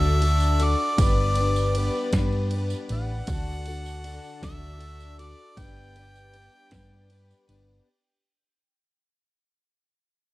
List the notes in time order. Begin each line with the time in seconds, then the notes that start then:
Already playing: D2 D3 D4 F#4 A4 D5 E5
0.02 tambourine
0.22 D3 D4 F#4 A4, ride
0.40 tambourine
0.60 D4 F#4 A4 D5, ride
0.98 G1 G3 B3 D4 G4 B4 D5, kick, ride, tambourine
1.35 B3 B4, ride
1.41 D4
1.56 tambourine
1.75 G3 B3 D4 B4, ride
1.95 tambourine
2.13 G2 B3, kick, snare, ride, tambourine
2.17 G3 D4 B4
2.32 tambourine
2.51 G3, ride
2.56 B3 D4 B4
2.70 tambourine
2.89 A1 B3 B4 F#5, ride
2.94 D4
3.27 D2 D3 D4 F#4 A4 D5, kick, ride, tambourine
3.66 F#4 A4, ride
3.70 D4
3.86 tambourine
4.04 D3 D4 F#4 A4, ride
4.25 tambourine
4.42 D2 D3 D4 F#4 A4 E5, kick, snare, ride, tambourine
4.63 tambourine
4.79 D3 D4 F#4 A4, ride
5.00 tambourine
5.18 D4 F#4 A4 D5, ride
5.57 G1 G3 B3 D4 G4 B4 D5 G5, kick, ride, tambourine
5.96 B3 D4 B4, ride
6.16 tambourine
6.34 G3 B3 D4, ride
6.39 B4
6.71 G2 G3 B3 D4 B4, kick, snare, ride, tambourine
7.10 G3 B3 D4 B4, ride, tambourine
7.31 tambourine
7.48 G1 B3 D4 B4, ride, tambourine